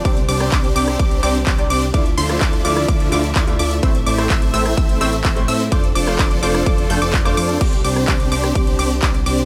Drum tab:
CC |----------------|----------------|----------------|----------------|
RD |----------------|----------------|----------------|----------------|
HH |xxoxxxoxxxoxxxox|xxoxxxoxxxoxxxox|xxoxxxoxxxoxxxox|xxoxxxoxxxoxxxox|
CP |----x-------x---|----x-------x---|----x-------x---|----x-------x---|
SD |---r---r--------|---r---r--------|---r---r--------|---r---r-----r--|
BD |o---o---o---o---|o---o---o---o---|o---o---o---o---|o---o---o---o---|

CC |x---------------|
RD |x---x---x---x---|
HH |xxoxxxoxxxoxxxox|
CP |----x-------x---|
SD |---r---r--------|
BD |o---o---o---o---|